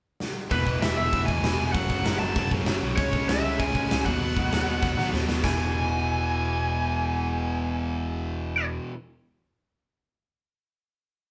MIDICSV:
0, 0, Header, 1, 6, 480
1, 0, Start_track
1, 0, Key_signature, 4, "major"
1, 0, Tempo, 308325
1, 782, Time_signature, 4, 2, 24, 8
1, 7983, Tempo, 304723
1, 17710, End_track
2, 0, Start_track
2, 0, Title_t, "Lead electric guitar"
2, 0, Program_c, 0, 29
2, 803, Note_on_c, 0, 71, 86
2, 1240, Note_off_c, 0, 71, 0
2, 1274, Note_on_c, 0, 76, 77
2, 1497, Note_off_c, 0, 76, 0
2, 1516, Note_on_c, 0, 76, 84
2, 1953, Note_on_c, 0, 80, 105
2, 2004, Note_off_c, 0, 76, 0
2, 2675, Note_off_c, 0, 80, 0
2, 2682, Note_on_c, 0, 78, 111
2, 3403, Note_off_c, 0, 78, 0
2, 3410, Note_on_c, 0, 81, 100
2, 3865, Note_off_c, 0, 81, 0
2, 4608, Note_on_c, 0, 73, 101
2, 5114, Note_off_c, 0, 73, 0
2, 5125, Note_on_c, 0, 76, 93
2, 5597, Note_on_c, 0, 80, 110
2, 5611, Note_off_c, 0, 76, 0
2, 6300, Note_off_c, 0, 80, 0
2, 6306, Note_on_c, 0, 78, 92
2, 7919, Note_off_c, 0, 78, 0
2, 8480, Note_on_c, 0, 80, 87
2, 13514, Note_off_c, 0, 80, 0
2, 17710, End_track
3, 0, Start_track
3, 0, Title_t, "Distorted electric guitar"
3, 0, Program_c, 1, 30
3, 6515, Note_on_c, 1, 59, 110
3, 6527, Note_on_c, 1, 47, 86
3, 6735, Note_off_c, 1, 47, 0
3, 6754, Note_off_c, 1, 59, 0
3, 17710, End_track
4, 0, Start_track
4, 0, Title_t, "Overdriven electric guitar"
4, 0, Program_c, 2, 29
4, 800, Note_on_c, 2, 40, 93
4, 812, Note_on_c, 2, 47, 116
4, 824, Note_on_c, 2, 52, 115
4, 1010, Note_off_c, 2, 47, 0
4, 1010, Note_off_c, 2, 52, 0
4, 1019, Note_off_c, 2, 40, 0
4, 1029, Note_on_c, 2, 47, 78
4, 1029, Note_on_c, 2, 52, 84
4, 1038, Note_on_c, 2, 40, 74
4, 1241, Note_off_c, 2, 40, 0
4, 1250, Note_off_c, 2, 47, 0
4, 1258, Note_off_c, 2, 52, 0
4, 1260, Note_on_c, 2, 40, 81
4, 1269, Note_on_c, 2, 47, 92
4, 1277, Note_on_c, 2, 52, 95
4, 1485, Note_off_c, 2, 52, 0
4, 1496, Note_off_c, 2, 47, 0
4, 1504, Note_off_c, 2, 40, 0
4, 1504, Note_on_c, 2, 52, 97
4, 1514, Note_on_c, 2, 47, 87
4, 1523, Note_on_c, 2, 40, 78
4, 1714, Note_off_c, 2, 40, 0
4, 1733, Note_on_c, 2, 40, 97
4, 1734, Note_off_c, 2, 47, 0
4, 1736, Note_off_c, 2, 52, 0
4, 1752, Note_on_c, 2, 47, 102
4, 1754, Note_on_c, 2, 52, 99
4, 1959, Note_off_c, 2, 52, 0
4, 1969, Note_off_c, 2, 40, 0
4, 1969, Note_off_c, 2, 47, 0
4, 1978, Note_on_c, 2, 52, 90
4, 1988, Note_on_c, 2, 40, 71
4, 1988, Note_on_c, 2, 47, 84
4, 2200, Note_off_c, 2, 40, 0
4, 2215, Note_off_c, 2, 47, 0
4, 2219, Note_on_c, 2, 40, 80
4, 2220, Note_off_c, 2, 52, 0
4, 2234, Note_on_c, 2, 47, 94
4, 2239, Note_on_c, 2, 52, 83
4, 2455, Note_off_c, 2, 52, 0
4, 2463, Note_off_c, 2, 47, 0
4, 2464, Note_off_c, 2, 40, 0
4, 2474, Note_on_c, 2, 52, 94
4, 2482, Note_on_c, 2, 47, 90
4, 2483, Note_on_c, 2, 40, 83
4, 2692, Note_off_c, 2, 40, 0
4, 2695, Note_off_c, 2, 52, 0
4, 2698, Note_on_c, 2, 42, 99
4, 2699, Note_off_c, 2, 47, 0
4, 2711, Note_on_c, 2, 49, 116
4, 2715, Note_on_c, 2, 54, 117
4, 2935, Note_off_c, 2, 54, 0
4, 2936, Note_off_c, 2, 49, 0
4, 2948, Note_off_c, 2, 42, 0
4, 2954, Note_on_c, 2, 54, 97
4, 2955, Note_on_c, 2, 49, 80
4, 2967, Note_on_c, 2, 42, 81
4, 3158, Note_off_c, 2, 42, 0
4, 3172, Note_off_c, 2, 49, 0
4, 3177, Note_off_c, 2, 54, 0
4, 3177, Note_on_c, 2, 42, 80
4, 3191, Note_on_c, 2, 49, 89
4, 3196, Note_on_c, 2, 54, 99
4, 3418, Note_off_c, 2, 54, 0
4, 3421, Note_off_c, 2, 49, 0
4, 3428, Note_off_c, 2, 42, 0
4, 3437, Note_on_c, 2, 54, 92
4, 3440, Note_on_c, 2, 49, 77
4, 3447, Note_on_c, 2, 42, 74
4, 3658, Note_off_c, 2, 42, 0
4, 3660, Note_off_c, 2, 49, 0
4, 3672, Note_off_c, 2, 54, 0
4, 3677, Note_on_c, 2, 42, 86
4, 3678, Note_on_c, 2, 49, 96
4, 3691, Note_on_c, 2, 54, 113
4, 3892, Note_off_c, 2, 49, 0
4, 3892, Note_off_c, 2, 54, 0
4, 3901, Note_off_c, 2, 42, 0
4, 3910, Note_on_c, 2, 49, 91
4, 3911, Note_on_c, 2, 54, 88
4, 3920, Note_on_c, 2, 42, 74
4, 4127, Note_off_c, 2, 42, 0
4, 4138, Note_off_c, 2, 49, 0
4, 4146, Note_on_c, 2, 42, 94
4, 4149, Note_off_c, 2, 54, 0
4, 4157, Note_on_c, 2, 49, 85
4, 4167, Note_on_c, 2, 54, 90
4, 4367, Note_off_c, 2, 54, 0
4, 4380, Note_off_c, 2, 49, 0
4, 4383, Note_off_c, 2, 42, 0
4, 4386, Note_on_c, 2, 54, 107
4, 4398, Note_on_c, 2, 49, 93
4, 4402, Note_on_c, 2, 42, 72
4, 4613, Note_off_c, 2, 54, 0
4, 4614, Note_off_c, 2, 49, 0
4, 4621, Note_off_c, 2, 42, 0
4, 4633, Note_on_c, 2, 49, 106
4, 4650, Note_on_c, 2, 56, 112
4, 4651, Note_on_c, 2, 61, 127
4, 4850, Note_off_c, 2, 61, 0
4, 4866, Note_off_c, 2, 56, 0
4, 4867, Note_off_c, 2, 49, 0
4, 4869, Note_on_c, 2, 61, 84
4, 4885, Note_on_c, 2, 49, 78
4, 4885, Note_on_c, 2, 56, 80
4, 5105, Note_off_c, 2, 49, 0
4, 5108, Note_off_c, 2, 56, 0
4, 5115, Note_off_c, 2, 61, 0
4, 5123, Note_on_c, 2, 49, 91
4, 5127, Note_on_c, 2, 56, 85
4, 5134, Note_on_c, 2, 61, 94
4, 5345, Note_off_c, 2, 61, 0
4, 5347, Note_off_c, 2, 56, 0
4, 5363, Note_off_c, 2, 49, 0
4, 5364, Note_on_c, 2, 61, 89
4, 5366, Note_on_c, 2, 56, 81
4, 5381, Note_on_c, 2, 49, 77
4, 5576, Note_off_c, 2, 49, 0
4, 5587, Note_off_c, 2, 56, 0
4, 5588, Note_off_c, 2, 61, 0
4, 5595, Note_on_c, 2, 49, 94
4, 5606, Note_on_c, 2, 56, 93
4, 5607, Note_on_c, 2, 61, 105
4, 5829, Note_off_c, 2, 61, 0
4, 5834, Note_off_c, 2, 56, 0
4, 5848, Note_on_c, 2, 61, 92
4, 5851, Note_off_c, 2, 49, 0
4, 5852, Note_on_c, 2, 56, 80
4, 5869, Note_on_c, 2, 49, 77
4, 6072, Note_off_c, 2, 49, 0
4, 6084, Note_off_c, 2, 56, 0
4, 6089, Note_off_c, 2, 61, 0
4, 6091, Note_on_c, 2, 49, 88
4, 6103, Note_on_c, 2, 56, 80
4, 6107, Note_on_c, 2, 61, 98
4, 6305, Note_off_c, 2, 49, 0
4, 6311, Note_off_c, 2, 56, 0
4, 6314, Note_off_c, 2, 61, 0
4, 6329, Note_on_c, 2, 47, 99
4, 6335, Note_on_c, 2, 54, 121
4, 6342, Note_on_c, 2, 59, 114
4, 6561, Note_off_c, 2, 59, 0
4, 6564, Note_off_c, 2, 54, 0
4, 6573, Note_off_c, 2, 47, 0
4, 6580, Note_on_c, 2, 59, 103
4, 6583, Note_on_c, 2, 54, 107
4, 6592, Note_on_c, 2, 47, 98
4, 6783, Note_off_c, 2, 47, 0
4, 6793, Note_off_c, 2, 54, 0
4, 6802, Note_on_c, 2, 47, 75
4, 6807, Note_off_c, 2, 59, 0
4, 6812, Note_on_c, 2, 54, 95
4, 6826, Note_on_c, 2, 59, 82
4, 7022, Note_off_c, 2, 59, 0
4, 7027, Note_off_c, 2, 54, 0
4, 7040, Note_off_c, 2, 47, 0
4, 7041, Note_on_c, 2, 59, 89
4, 7045, Note_on_c, 2, 54, 84
4, 7058, Note_on_c, 2, 47, 80
4, 7259, Note_off_c, 2, 47, 0
4, 7268, Note_off_c, 2, 54, 0
4, 7278, Note_on_c, 2, 47, 85
4, 7279, Note_off_c, 2, 59, 0
4, 7286, Note_on_c, 2, 54, 91
4, 7297, Note_on_c, 2, 59, 93
4, 7480, Note_off_c, 2, 59, 0
4, 7484, Note_off_c, 2, 54, 0
4, 7497, Note_off_c, 2, 47, 0
4, 7499, Note_on_c, 2, 59, 111
4, 7503, Note_on_c, 2, 54, 95
4, 7515, Note_on_c, 2, 47, 88
4, 7723, Note_off_c, 2, 47, 0
4, 7730, Note_off_c, 2, 54, 0
4, 7735, Note_off_c, 2, 59, 0
4, 7741, Note_on_c, 2, 47, 80
4, 7748, Note_on_c, 2, 54, 93
4, 7754, Note_on_c, 2, 59, 88
4, 7981, Note_off_c, 2, 59, 0
4, 7990, Note_off_c, 2, 54, 0
4, 7995, Note_off_c, 2, 47, 0
4, 8000, Note_on_c, 2, 59, 96
4, 8009, Note_on_c, 2, 54, 79
4, 8014, Note_on_c, 2, 47, 78
4, 8198, Note_off_c, 2, 47, 0
4, 8213, Note_off_c, 2, 54, 0
4, 8217, Note_on_c, 2, 47, 85
4, 8218, Note_off_c, 2, 59, 0
4, 8232, Note_on_c, 2, 54, 91
4, 8237, Note_on_c, 2, 59, 100
4, 8444, Note_on_c, 2, 40, 110
4, 8447, Note_off_c, 2, 47, 0
4, 8455, Note_off_c, 2, 54, 0
4, 8457, Note_off_c, 2, 59, 0
4, 8476, Note_on_c, 2, 47, 116
4, 8511, Note_on_c, 2, 52, 117
4, 13957, Note_off_c, 2, 40, 0
4, 13989, Note_off_c, 2, 47, 0
4, 14025, Note_off_c, 2, 52, 0
4, 17710, End_track
5, 0, Start_track
5, 0, Title_t, "Picked electric bass"
5, 0, Program_c, 3, 34
5, 806, Note_on_c, 3, 28, 86
5, 983, Note_off_c, 3, 28, 0
5, 1036, Note_on_c, 3, 28, 89
5, 1217, Note_off_c, 3, 28, 0
5, 1278, Note_on_c, 3, 28, 85
5, 1458, Note_off_c, 3, 28, 0
5, 1528, Note_on_c, 3, 28, 95
5, 1704, Note_off_c, 3, 28, 0
5, 1764, Note_on_c, 3, 28, 95
5, 1942, Note_off_c, 3, 28, 0
5, 2001, Note_on_c, 3, 40, 89
5, 2180, Note_off_c, 3, 40, 0
5, 2230, Note_on_c, 3, 28, 93
5, 2414, Note_off_c, 3, 28, 0
5, 2473, Note_on_c, 3, 28, 97
5, 2656, Note_off_c, 3, 28, 0
5, 2725, Note_on_c, 3, 30, 93
5, 2904, Note_off_c, 3, 30, 0
5, 2953, Note_on_c, 3, 30, 90
5, 3136, Note_off_c, 3, 30, 0
5, 3198, Note_on_c, 3, 30, 90
5, 3379, Note_off_c, 3, 30, 0
5, 3431, Note_on_c, 3, 30, 91
5, 3616, Note_off_c, 3, 30, 0
5, 3667, Note_on_c, 3, 30, 84
5, 3853, Note_off_c, 3, 30, 0
5, 3918, Note_on_c, 3, 42, 81
5, 4100, Note_off_c, 3, 42, 0
5, 4137, Note_on_c, 3, 30, 87
5, 4328, Note_off_c, 3, 30, 0
5, 4392, Note_on_c, 3, 35, 84
5, 4577, Note_off_c, 3, 35, 0
5, 4640, Note_on_c, 3, 37, 97
5, 4822, Note_off_c, 3, 37, 0
5, 4880, Note_on_c, 3, 37, 85
5, 5062, Note_off_c, 3, 37, 0
5, 5115, Note_on_c, 3, 37, 86
5, 5299, Note_off_c, 3, 37, 0
5, 5344, Note_on_c, 3, 37, 92
5, 5532, Note_off_c, 3, 37, 0
5, 5609, Note_on_c, 3, 37, 90
5, 5788, Note_off_c, 3, 37, 0
5, 5840, Note_on_c, 3, 49, 93
5, 6022, Note_off_c, 3, 49, 0
5, 6087, Note_on_c, 3, 37, 89
5, 6266, Note_off_c, 3, 37, 0
5, 6317, Note_on_c, 3, 39, 83
5, 6499, Note_off_c, 3, 39, 0
5, 6543, Note_on_c, 3, 39, 97
5, 6731, Note_off_c, 3, 39, 0
5, 6796, Note_on_c, 3, 39, 93
5, 6979, Note_off_c, 3, 39, 0
5, 7034, Note_on_c, 3, 39, 90
5, 7217, Note_off_c, 3, 39, 0
5, 7272, Note_on_c, 3, 39, 85
5, 7455, Note_off_c, 3, 39, 0
5, 7514, Note_on_c, 3, 39, 95
5, 7696, Note_off_c, 3, 39, 0
5, 7748, Note_on_c, 3, 51, 87
5, 7932, Note_off_c, 3, 51, 0
5, 7988, Note_on_c, 3, 39, 94
5, 8174, Note_off_c, 3, 39, 0
5, 8232, Note_on_c, 3, 39, 91
5, 8416, Note_off_c, 3, 39, 0
5, 8473, Note_on_c, 3, 28, 90
5, 13728, Note_off_c, 3, 28, 0
5, 17710, End_track
6, 0, Start_track
6, 0, Title_t, "Drums"
6, 316, Note_on_c, 9, 38, 70
6, 472, Note_off_c, 9, 38, 0
6, 795, Note_on_c, 9, 36, 106
6, 798, Note_on_c, 9, 46, 60
6, 951, Note_off_c, 9, 36, 0
6, 954, Note_off_c, 9, 46, 0
6, 1036, Note_on_c, 9, 36, 82
6, 1192, Note_off_c, 9, 36, 0
6, 1277, Note_on_c, 9, 46, 64
6, 1283, Note_on_c, 9, 38, 124
6, 1432, Note_off_c, 9, 46, 0
6, 1439, Note_off_c, 9, 38, 0
6, 1745, Note_on_c, 9, 46, 59
6, 1758, Note_on_c, 9, 36, 102
6, 1901, Note_off_c, 9, 46, 0
6, 1913, Note_off_c, 9, 36, 0
6, 1998, Note_on_c, 9, 36, 83
6, 2153, Note_off_c, 9, 36, 0
6, 2236, Note_on_c, 9, 46, 61
6, 2243, Note_on_c, 9, 38, 114
6, 2392, Note_off_c, 9, 46, 0
6, 2398, Note_off_c, 9, 38, 0
6, 2712, Note_on_c, 9, 46, 62
6, 2716, Note_on_c, 9, 36, 116
6, 2867, Note_off_c, 9, 46, 0
6, 2872, Note_off_c, 9, 36, 0
6, 2954, Note_on_c, 9, 36, 82
6, 3110, Note_off_c, 9, 36, 0
6, 3195, Note_on_c, 9, 46, 60
6, 3202, Note_on_c, 9, 38, 120
6, 3351, Note_off_c, 9, 46, 0
6, 3357, Note_off_c, 9, 38, 0
6, 3663, Note_on_c, 9, 46, 51
6, 3673, Note_on_c, 9, 36, 116
6, 3818, Note_off_c, 9, 46, 0
6, 3829, Note_off_c, 9, 36, 0
6, 3913, Note_on_c, 9, 36, 90
6, 4069, Note_off_c, 9, 36, 0
6, 4141, Note_on_c, 9, 46, 56
6, 4147, Note_on_c, 9, 38, 116
6, 4297, Note_off_c, 9, 46, 0
6, 4303, Note_off_c, 9, 38, 0
6, 4631, Note_on_c, 9, 46, 58
6, 4632, Note_on_c, 9, 36, 114
6, 4786, Note_off_c, 9, 46, 0
6, 4788, Note_off_c, 9, 36, 0
6, 4873, Note_on_c, 9, 36, 84
6, 5029, Note_off_c, 9, 36, 0
6, 5118, Note_on_c, 9, 46, 64
6, 5124, Note_on_c, 9, 38, 121
6, 5274, Note_off_c, 9, 46, 0
6, 5280, Note_off_c, 9, 38, 0
6, 5599, Note_on_c, 9, 36, 109
6, 5599, Note_on_c, 9, 46, 56
6, 5755, Note_off_c, 9, 36, 0
6, 5755, Note_off_c, 9, 46, 0
6, 5837, Note_on_c, 9, 36, 80
6, 5993, Note_off_c, 9, 36, 0
6, 6085, Note_on_c, 9, 46, 68
6, 6091, Note_on_c, 9, 38, 114
6, 6241, Note_off_c, 9, 46, 0
6, 6247, Note_off_c, 9, 38, 0
6, 6319, Note_on_c, 9, 36, 99
6, 6474, Note_off_c, 9, 36, 0
6, 6554, Note_on_c, 9, 46, 63
6, 6710, Note_off_c, 9, 46, 0
6, 6796, Note_on_c, 9, 36, 90
6, 6952, Note_off_c, 9, 36, 0
6, 7041, Note_on_c, 9, 46, 65
6, 7048, Note_on_c, 9, 38, 115
6, 7197, Note_off_c, 9, 46, 0
6, 7203, Note_off_c, 9, 38, 0
6, 7513, Note_on_c, 9, 36, 108
6, 7516, Note_on_c, 9, 38, 60
6, 7668, Note_off_c, 9, 36, 0
6, 7672, Note_off_c, 9, 38, 0
6, 7762, Note_on_c, 9, 38, 63
6, 7917, Note_off_c, 9, 38, 0
6, 7995, Note_on_c, 9, 38, 92
6, 8153, Note_off_c, 9, 38, 0
6, 8232, Note_on_c, 9, 38, 99
6, 8389, Note_off_c, 9, 38, 0
6, 8463, Note_on_c, 9, 55, 84
6, 8469, Note_on_c, 9, 38, 100
6, 8472, Note_on_c, 9, 36, 94
6, 8620, Note_off_c, 9, 55, 0
6, 8627, Note_off_c, 9, 38, 0
6, 8629, Note_off_c, 9, 36, 0
6, 17710, End_track
0, 0, End_of_file